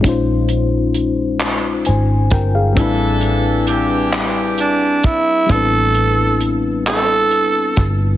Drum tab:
HH |xxxxxx|xxxxxx|xxxxxx|
CP |---x--|---x--|---x--|
BD |o----o|o----o|o----o|